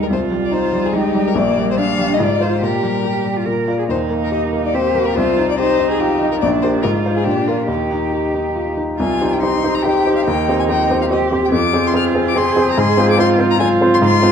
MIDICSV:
0, 0, Header, 1, 4, 480
1, 0, Start_track
1, 0, Key_signature, -3, "major"
1, 0, Tempo, 420168
1, 127, Time_signature, 3, 2, 24, 8
1, 8288, Tempo, 429492
1, 10226, Key_signature, -3, "minor"
1, 11648, Tempo, 416956
1, 16318, End_track
2, 0, Start_track
2, 0, Title_t, "Violin"
2, 0, Program_c, 0, 40
2, 30, Note_on_c, 0, 70, 53
2, 73, Note_off_c, 0, 70, 0
2, 139, Note_on_c, 0, 72, 58
2, 231, Note_off_c, 0, 72, 0
2, 514, Note_on_c, 0, 74, 55
2, 609, Note_on_c, 0, 72, 65
2, 626, Note_off_c, 0, 74, 0
2, 982, Note_on_c, 0, 68, 53
2, 999, Note_off_c, 0, 72, 0
2, 1091, Note_on_c, 0, 67, 58
2, 1108, Note_off_c, 0, 68, 0
2, 1457, Note_on_c, 0, 70, 66
2, 1474, Note_off_c, 0, 67, 0
2, 1571, Note_on_c, 0, 74, 74
2, 1588, Note_off_c, 0, 70, 0
2, 1920, Note_off_c, 0, 74, 0
2, 1952, Note_on_c, 0, 72, 65
2, 2045, Note_off_c, 0, 72, 0
2, 2052, Note_on_c, 0, 77, 86
2, 2442, Note_on_c, 0, 75, 56
2, 2459, Note_off_c, 0, 77, 0
2, 2550, Note_on_c, 0, 74, 72
2, 2567, Note_off_c, 0, 75, 0
2, 2768, Note_on_c, 0, 72, 62
2, 2785, Note_off_c, 0, 74, 0
2, 3013, Note_on_c, 0, 70, 58
2, 3030, Note_off_c, 0, 72, 0
2, 3973, Note_off_c, 0, 70, 0
2, 4457, Note_on_c, 0, 72, 61
2, 4548, Note_off_c, 0, 72, 0
2, 4841, Note_on_c, 0, 70, 47
2, 4934, Note_off_c, 0, 70, 0
2, 4941, Note_on_c, 0, 75, 60
2, 5033, Note_off_c, 0, 75, 0
2, 5319, Note_on_c, 0, 74, 55
2, 5425, Note_on_c, 0, 72, 68
2, 5443, Note_off_c, 0, 74, 0
2, 5776, Note_on_c, 0, 70, 62
2, 5794, Note_off_c, 0, 72, 0
2, 5889, Note_on_c, 0, 72, 72
2, 5906, Note_off_c, 0, 70, 0
2, 6258, Note_off_c, 0, 72, 0
2, 6273, Note_on_c, 0, 74, 75
2, 6378, Note_off_c, 0, 74, 0
2, 6384, Note_on_c, 0, 72, 81
2, 6736, Note_off_c, 0, 72, 0
2, 6748, Note_on_c, 0, 68, 63
2, 6850, Note_on_c, 0, 67, 64
2, 6868, Note_off_c, 0, 68, 0
2, 7208, Note_off_c, 0, 67, 0
2, 7215, Note_on_c, 0, 70, 66
2, 7263, Note_off_c, 0, 70, 0
2, 7328, Note_on_c, 0, 74, 82
2, 7420, Note_off_c, 0, 74, 0
2, 7563, Note_on_c, 0, 72, 69
2, 7654, Note_off_c, 0, 72, 0
2, 7800, Note_on_c, 0, 70, 70
2, 7891, Note_off_c, 0, 70, 0
2, 8182, Note_on_c, 0, 68, 56
2, 8276, Note_on_c, 0, 67, 61
2, 8293, Note_off_c, 0, 68, 0
2, 8534, Note_on_c, 0, 65, 51
2, 8551, Note_off_c, 0, 67, 0
2, 8772, Note_off_c, 0, 65, 0
2, 8782, Note_on_c, 0, 63, 46
2, 9966, Note_off_c, 0, 63, 0
2, 10236, Note_on_c, 0, 80, 69
2, 10610, Note_on_c, 0, 79, 51
2, 10627, Note_off_c, 0, 80, 0
2, 10697, Note_off_c, 0, 79, 0
2, 10704, Note_on_c, 0, 84, 72
2, 11072, Note_on_c, 0, 82, 58
2, 11089, Note_off_c, 0, 84, 0
2, 11161, Note_on_c, 0, 79, 69
2, 11177, Note_off_c, 0, 82, 0
2, 11521, Note_off_c, 0, 79, 0
2, 11534, Note_on_c, 0, 77, 62
2, 11635, Note_off_c, 0, 77, 0
2, 11642, Note_on_c, 0, 79, 70
2, 11999, Note_off_c, 0, 79, 0
2, 12034, Note_on_c, 0, 80, 65
2, 12077, Note_off_c, 0, 80, 0
2, 12141, Note_on_c, 0, 79, 72
2, 12490, Note_off_c, 0, 79, 0
2, 12517, Note_on_c, 0, 77, 60
2, 12560, Note_off_c, 0, 77, 0
2, 12637, Note_on_c, 0, 75, 69
2, 12729, Note_off_c, 0, 75, 0
2, 13018, Note_on_c, 0, 79, 67
2, 13057, Note_off_c, 0, 79, 0
2, 13103, Note_on_c, 0, 86, 87
2, 13500, Note_on_c, 0, 84, 62
2, 13517, Note_off_c, 0, 86, 0
2, 13597, Note_off_c, 0, 84, 0
2, 13603, Note_on_c, 0, 89, 84
2, 13696, Note_off_c, 0, 89, 0
2, 13974, Note_on_c, 0, 86, 71
2, 14080, Note_on_c, 0, 84, 75
2, 14097, Note_off_c, 0, 86, 0
2, 14427, Note_off_c, 0, 84, 0
2, 14461, Note_on_c, 0, 82, 77
2, 14550, Note_on_c, 0, 84, 87
2, 14567, Note_off_c, 0, 82, 0
2, 14900, Note_off_c, 0, 84, 0
2, 14921, Note_on_c, 0, 86, 82
2, 15023, Note_off_c, 0, 86, 0
2, 15029, Note_on_c, 0, 84, 89
2, 15121, Note_off_c, 0, 84, 0
2, 15382, Note_on_c, 0, 82, 83
2, 15482, Note_off_c, 0, 82, 0
2, 15489, Note_on_c, 0, 80, 87
2, 15581, Note_off_c, 0, 80, 0
2, 15884, Note_on_c, 0, 84, 85
2, 15925, Note_off_c, 0, 84, 0
2, 16000, Note_on_c, 0, 84, 103
2, 16318, Note_off_c, 0, 84, 0
2, 16318, End_track
3, 0, Start_track
3, 0, Title_t, "Cello"
3, 0, Program_c, 1, 42
3, 0, Note_on_c, 1, 63, 44
3, 124, Note_off_c, 1, 63, 0
3, 131, Note_on_c, 1, 65, 54
3, 1068, Note_on_c, 1, 63, 55
3, 1085, Note_off_c, 1, 65, 0
3, 1549, Note_off_c, 1, 63, 0
3, 1570, Note_on_c, 1, 58, 54
3, 2023, Note_on_c, 1, 62, 62
3, 2040, Note_off_c, 1, 58, 0
3, 2508, Note_on_c, 1, 65, 56
3, 2525, Note_off_c, 1, 62, 0
3, 2988, Note_off_c, 1, 65, 0
3, 2995, Note_on_c, 1, 67, 46
3, 3423, Note_off_c, 1, 67, 0
3, 3474, Note_on_c, 1, 67, 46
3, 3848, Note_on_c, 1, 65, 33
3, 3865, Note_off_c, 1, 67, 0
3, 3948, Note_on_c, 1, 70, 43
3, 3966, Note_off_c, 1, 65, 0
3, 4323, Note_off_c, 1, 70, 0
3, 4330, Note_on_c, 1, 68, 37
3, 4379, Note_off_c, 1, 68, 0
3, 4454, Note_on_c, 1, 63, 51
3, 5420, Note_on_c, 1, 67, 56
3, 5437, Note_off_c, 1, 63, 0
3, 5899, Note_off_c, 1, 67, 0
3, 5906, Note_on_c, 1, 65, 62
3, 6377, Note_off_c, 1, 65, 0
3, 6395, Note_on_c, 1, 63, 63
3, 7314, Note_off_c, 1, 63, 0
3, 7321, Note_on_c, 1, 62, 62
3, 7794, Note_on_c, 1, 65, 55
3, 7812, Note_off_c, 1, 62, 0
3, 8267, Note_on_c, 1, 62, 49
3, 8284, Note_off_c, 1, 65, 0
3, 8749, Note_off_c, 1, 62, 0
3, 8755, Note_on_c, 1, 67, 42
3, 9952, Note_off_c, 1, 67, 0
3, 10214, Note_on_c, 1, 65, 60
3, 10692, Note_on_c, 1, 63, 48
3, 10709, Note_off_c, 1, 65, 0
3, 11167, Note_on_c, 1, 67, 58
3, 11184, Note_off_c, 1, 63, 0
3, 11642, Note_off_c, 1, 67, 0
3, 11655, Note_on_c, 1, 63, 58
3, 12597, Note_off_c, 1, 63, 0
3, 12614, Note_on_c, 1, 67, 60
3, 13085, Note_off_c, 1, 67, 0
3, 13104, Note_on_c, 1, 65, 65
3, 14054, Note_on_c, 1, 68, 69
3, 14071, Note_off_c, 1, 65, 0
3, 14527, Note_off_c, 1, 68, 0
3, 14534, Note_on_c, 1, 68, 70
3, 15005, Note_on_c, 1, 65, 71
3, 15022, Note_off_c, 1, 68, 0
3, 15477, Note_off_c, 1, 65, 0
3, 15484, Note_on_c, 1, 65, 81
3, 16318, Note_off_c, 1, 65, 0
3, 16318, End_track
4, 0, Start_track
4, 0, Title_t, "Grand piano"
4, 0, Program_c, 2, 0
4, 0, Control_c, 2, 64, 127
4, 0, Note_on_c, 2, 39, 35
4, 0, Note_on_c, 2, 55, 32
4, 0, Note_on_c, 2, 56, 26
4, 0, Note_on_c, 2, 63, 31
4, 118, Note_on_c, 2, 36, 41
4, 124, Note_off_c, 2, 55, 0
4, 151, Control_c, 2, 64, 0
4, 152, Note_off_c, 2, 63, 0
4, 158, Note_off_c, 2, 56, 0
4, 160, Note_off_c, 2, 39, 0
4, 305, Control_c, 2, 64, 127
4, 359, Note_on_c, 2, 55, 36
4, 587, Note_on_c, 2, 63, 38
4, 741, Note_off_c, 2, 55, 0
4, 832, Note_on_c, 2, 55, 38
4, 974, Note_off_c, 2, 63, 0
4, 1066, Note_on_c, 2, 56, 34
4, 1216, Note_off_c, 2, 55, 0
4, 1307, Note_on_c, 2, 55, 42
4, 1309, Note_off_c, 2, 56, 0
4, 1505, Note_off_c, 2, 36, 0
4, 1543, Note_on_c, 2, 34, 52
4, 1549, Note_off_c, 2, 55, 0
4, 1573, Control_c, 2, 64, 0
4, 1777, Control_c, 2, 64, 127
4, 1797, Note_on_c, 2, 55, 42
4, 2033, Note_on_c, 2, 62, 43
4, 2178, Note_off_c, 2, 55, 0
4, 2274, Note_on_c, 2, 55, 43
4, 2417, Note_off_c, 2, 62, 0
4, 2480, Note_off_c, 2, 34, 0
4, 2511, Note_on_c, 2, 44, 47
4, 2515, Note_off_c, 2, 55, 0
4, 2537, Control_c, 2, 64, 0
4, 2716, Control_c, 2, 64, 127
4, 2752, Note_on_c, 2, 72, 38
4, 2753, Note_on_c, 2, 65, 35
4, 2972, Note_off_c, 2, 72, 0
4, 2973, Note_off_c, 2, 65, 0
4, 2983, Note_off_c, 2, 44, 0
4, 2992, Note_on_c, 2, 46, 42
4, 3020, Control_c, 2, 64, 0
4, 3194, Control_c, 2, 64, 127
4, 3234, Note_on_c, 2, 55, 31
4, 3476, Note_on_c, 2, 67, 29
4, 3624, Note_off_c, 2, 55, 0
4, 3709, Note_on_c, 2, 55, 29
4, 3866, Note_off_c, 2, 67, 0
4, 3934, Note_off_c, 2, 46, 0
4, 3959, Note_off_c, 2, 55, 0
4, 3959, Note_on_c, 2, 46, 34
4, 3987, Control_c, 2, 64, 0
4, 4160, Control_c, 2, 64, 127
4, 4203, Note_on_c, 2, 65, 26
4, 4205, Note_on_c, 2, 74, 30
4, 4425, Note_off_c, 2, 65, 0
4, 4427, Note_off_c, 2, 74, 0
4, 4435, Note_off_c, 2, 46, 0
4, 4443, Note_on_c, 2, 39, 39
4, 4475, Control_c, 2, 64, 0
4, 4633, Control_c, 2, 64, 127
4, 4688, Note_on_c, 2, 58, 32
4, 4929, Note_on_c, 2, 67, 36
4, 5078, Note_off_c, 2, 58, 0
4, 5171, Note_on_c, 2, 58, 36
4, 5319, Note_off_c, 2, 67, 0
4, 5420, Note_on_c, 2, 60, 32
4, 5561, Note_off_c, 2, 58, 0
4, 5655, Note_on_c, 2, 58, 38
4, 5661, Note_off_c, 2, 60, 0
4, 5854, Note_off_c, 2, 39, 0
4, 5900, Note_off_c, 2, 58, 0
4, 5906, Note_on_c, 2, 36, 54
4, 5925, Control_c, 2, 64, 0
4, 6110, Control_c, 2, 64, 127
4, 6149, Note_on_c, 2, 63, 40
4, 6388, Note_on_c, 2, 67, 45
4, 6531, Note_off_c, 2, 63, 0
4, 6622, Note_on_c, 2, 63, 46
4, 6768, Note_off_c, 2, 67, 0
4, 6858, Note_on_c, 2, 65, 39
4, 7003, Note_off_c, 2, 63, 0
4, 7097, Note_off_c, 2, 65, 0
4, 7101, Note_on_c, 2, 63, 43
4, 7294, Note_off_c, 2, 36, 0
4, 7336, Note_off_c, 2, 63, 0
4, 7345, Note_on_c, 2, 34, 54
4, 7358, Control_c, 2, 64, 0
4, 7552, Control_c, 2, 64, 127
4, 7584, Note_on_c, 2, 67, 40
4, 7587, Note_on_c, 2, 70, 42
4, 7791, Note_off_c, 2, 67, 0
4, 7793, Note_off_c, 2, 70, 0
4, 7799, Note_off_c, 2, 34, 0
4, 7820, Note_on_c, 2, 44, 51
4, 7827, Control_c, 2, 64, 0
4, 8022, Control_c, 2, 64, 127
4, 8062, Note_on_c, 2, 65, 39
4, 8066, Note_on_c, 2, 72, 41
4, 8272, Note_off_c, 2, 65, 0
4, 8274, Note_off_c, 2, 72, 0
4, 8279, Note_off_c, 2, 44, 0
4, 8296, Note_on_c, 2, 46, 42
4, 8310, Control_c, 2, 64, 0
4, 8492, Control_c, 2, 64, 127
4, 8536, Note_on_c, 2, 65, 31
4, 8543, Note_on_c, 2, 70, 33
4, 8749, Note_off_c, 2, 65, 0
4, 8753, Note_off_c, 2, 70, 0
4, 8758, Note_off_c, 2, 46, 0
4, 8765, Note_on_c, 2, 39, 37
4, 8788, Control_c, 2, 64, 0
4, 8972, Control_c, 2, 64, 127
4, 9021, Note_on_c, 2, 63, 28
4, 9264, Note_on_c, 2, 67, 30
4, 9406, Note_off_c, 2, 63, 0
4, 9506, Note_on_c, 2, 63, 28
4, 9647, Note_off_c, 2, 67, 0
4, 9739, Note_on_c, 2, 65, 24
4, 9890, Note_off_c, 2, 63, 0
4, 9981, Note_on_c, 2, 63, 29
4, 9983, Note_off_c, 2, 65, 0
4, 10180, Note_off_c, 2, 39, 0
4, 10225, Note_off_c, 2, 63, 0
4, 10235, Note_on_c, 2, 36, 52
4, 10247, Control_c, 2, 64, 0
4, 10401, Control_c, 2, 64, 127
4, 10462, Note_off_c, 2, 36, 0
4, 10478, Note_on_c, 2, 63, 36
4, 10478, Note_on_c, 2, 67, 38
4, 10478, Note_on_c, 2, 72, 41
4, 10686, Note_off_c, 2, 63, 0
4, 10686, Note_off_c, 2, 67, 0
4, 10686, Note_off_c, 2, 72, 0
4, 10715, Note_on_c, 2, 67, 40
4, 10717, Note_on_c, 2, 63, 37
4, 10723, Note_on_c, 2, 72, 41
4, 10922, Note_off_c, 2, 67, 0
4, 10923, Note_off_c, 2, 63, 0
4, 10926, Note_off_c, 2, 72, 0
4, 10949, Note_on_c, 2, 63, 39
4, 10952, Note_on_c, 2, 67, 38
4, 10958, Note_on_c, 2, 72, 42
4, 11157, Note_off_c, 2, 63, 0
4, 11159, Note_off_c, 2, 67, 0
4, 11162, Note_off_c, 2, 72, 0
4, 11187, Note_on_c, 2, 63, 39
4, 11190, Note_on_c, 2, 67, 38
4, 11195, Note_on_c, 2, 72, 41
4, 11394, Note_off_c, 2, 63, 0
4, 11395, Note_off_c, 2, 67, 0
4, 11398, Note_off_c, 2, 72, 0
4, 11428, Note_on_c, 2, 63, 42
4, 11430, Note_on_c, 2, 67, 40
4, 11433, Note_on_c, 2, 72, 41
4, 11632, Note_off_c, 2, 63, 0
4, 11633, Note_off_c, 2, 67, 0
4, 11635, Note_off_c, 2, 72, 0
4, 11663, Note_on_c, 2, 39, 56
4, 11668, Control_c, 2, 64, 0
4, 11850, Control_c, 2, 64, 127
4, 11889, Note_off_c, 2, 39, 0
4, 11907, Note_on_c, 2, 60, 36
4, 11913, Note_on_c, 2, 67, 38
4, 11917, Note_on_c, 2, 72, 42
4, 12116, Note_off_c, 2, 60, 0
4, 12119, Note_off_c, 2, 67, 0
4, 12121, Note_off_c, 2, 72, 0
4, 12139, Note_on_c, 2, 60, 38
4, 12145, Note_on_c, 2, 67, 41
4, 12146, Note_on_c, 2, 72, 42
4, 12352, Note_off_c, 2, 60, 0
4, 12356, Note_off_c, 2, 67, 0
4, 12356, Note_off_c, 2, 72, 0
4, 12384, Note_on_c, 2, 60, 44
4, 12394, Note_on_c, 2, 67, 41
4, 12397, Note_on_c, 2, 72, 46
4, 12595, Note_off_c, 2, 60, 0
4, 12601, Note_off_c, 2, 67, 0
4, 12602, Note_off_c, 2, 72, 0
4, 12624, Note_on_c, 2, 60, 42
4, 12624, Note_on_c, 2, 67, 40
4, 12628, Note_on_c, 2, 72, 43
4, 12835, Note_off_c, 2, 60, 0
4, 12835, Note_off_c, 2, 67, 0
4, 12837, Note_off_c, 2, 72, 0
4, 12867, Note_on_c, 2, 60, 44
4, 12874, Note_on_c, 2, 67, 45
4, 12877, Note_on_c, 2, 72, 46
4, 13077, Note_off_c, 2, 60, 0
4, 13081, Note_off_c, 2, 67, 0
4, 13083, Note_off_c, 2, 72, 0
4, 13095, Note_on_c, 2, 41, 55
4, 13116, Control_c, 2, 64, 0
4, 13307, Control_c, 2, 64, 127
4, 13329, Note_off_c, 2, 41, 0
4, 13343, Note_on_c, 2, 60, 41
4, 13344, Note_on_c, 2, 68, 41
4, 13350, Note_on_c, 2, 72, 47
4, 13557, Note_off_c, 2, 60, 0
4, 13558, Note_off_c, 2, 68, 0
4, 13561, Note_off_c, 2, 72, 0
4, 13577, Note_on_c, 2, 60, 44
4, 13582, Note_on_c, 2, 68, 43
4, 13584, Note_on_c, 2, 72, 49
4, 13793, Note_off_c, 2, 60, 0
4, 13796, Note_off_c, 2, 68, 0
4, 13797, Note_off_c, 2, 72, 0
4, 13820, Note_on_c, 2, 68, 44
4, 13823, Note_on_c, 2, 60, 45
4, 13829, Note_on_c, 2, 72, 47
4, 14034, Note_off_c, 2, 68, 0
4, 14036, Note_off_c, 2, 60, 0
4, 14039, Note_off_c, 2, 72, 0
4, 14060, Note_on_c, 2, 60, 46
4, 14068, Note_on_c, 2, 72, 48
4, 14069, Note_on_c, 2, 68, 44
4, 14273, Note_off_c, 2, 60, 0
4, 14278, Note_off_c, 2, 68, 0
4, 14278, Note_off_c, 2, 72, 0
4, 14298, Note_on_c, 2, 60, 45
4, 14304, Note_on_c, 2, 68, 49
4, 14307, Note_on_c, 2, 72, 51
4, 14512, Note_off_c, 2, 60, 0
4, 14515, Note_off_c, 2, 68, 0
4, 14517, Note_off_c, 2, 72, 0
4, 14543, Note_on_c, 2, 44, 66
4, 14554, Control_c, 2, 64, 0
4, 14720, Control_c, 2, 64, 127
4, 14769, Note_on_c, 2, 60, 48
4, 14770, Note_off_c, 2, 44, 0
4, 14774, Note_on_c, 2, 65, 47
4, 14779, Note_on_c, 2, 72, 54
4, 14985, Note_off_c, 2, 60, 0
4, 14988, Note_off_c, 2, 65, 0
4, 14990, Note_off_c, 2, 72, 0
4, 15008, Note_on_c, 2, 60, 50
4, 15015, Note_on_c, 2, 65, 47
4, 15017, Note_on_c, 2, 72, 54
4, 15224, Note_off_c, 2, 60, 0
4, 15227, Note_off_c, 2, 65, 0
4, 15229, Note_off_c, 2, 72, 0
4, 15246, Note_on_c, 2, 60, 49
4, 15254, Note_on_c, 2, 65, 53
4, 15255, Note_on_c, 2, 72, 56
4, 15463, Note_off_c, 2, 60, 0
4, 15467, Note_off_c, 2, 65, 0
4, 15468, Note_off_c, 2, 72, 0
4, 15495, Note_on_c, 2, 60, 48
4, 15501, Note_on_c, 2, 65, 48
4, 15503, Note_on_c, 2, 72, 53
4, 15709, Note_off_c, 2, 60, 0
4, 15712, Note_off_c, 2, 65, 0
4, 15713, Note_off_c, 2, 72, 0
4, 15737, Note_on_c, 2, 60, 53
4, 15745, Note_on_c, 2, 65, 53
4, 15745, Note_on_c, 2, 72, 61
4, 15949, Note_off_c, 2, 60, 0
4, 15954, Note_off_c, 2, 65, 0
4, 15954, Note_off_c, 2, 72, 0
4, 15973, Note_on_c, 2, 44, 70
4, 15989, Control_c, 2, 64, 0
4, 16164, Control_c, 2, 64, 127
4, 16203, Note_off_c, 2, 44, 0
4, 16208, Note_on_c, 2, 60, 53
4, 16213, Note_on_c, 2, 65, 49
4, 16218, Note_on_c, 2, 72, 55
4, 16318, Note_off_c, 2, 60, 0
4, 16318, Note_off_c, 2, 65, 0
4, 16318, Note_off_c, 2, 72, 0
4, 16318, End_track
0, 0, End_of_file